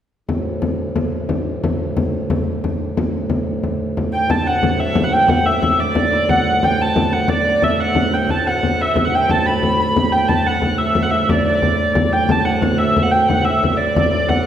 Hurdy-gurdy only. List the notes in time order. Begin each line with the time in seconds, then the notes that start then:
4.13 G5
4.30 A5
4.47 F#5
4.80 E5
5.04 F#5
5.13 G5
5.29 F#5
5.46 E5
5.80 D5
6.13 D5
6.29 F#5
6.64 G5
6.82 A5
7.13 F#5
7.29 D5
7.63 E5
7.80 F#5
8.13 G5
8.30 A5
8.47 F#5
8.81 E5
9.05 F#5
9.14 G5
9.30 A5
9.46 B5
9.80 B5
10.12 G5
10.29 A5
10.46 F#5
10.78 E5
11.02 F#5
11.11 E5
11.29 D5
12.12 G5
12.31 A5
12.45 F#5
12.61 F#5
12.78 E5
13.03 F#5
13.11 G5
13.28 F#5
13.45 E5
13.72 E5
13.77 D5
14.12 D5
14.29 F#5
14.43 F#5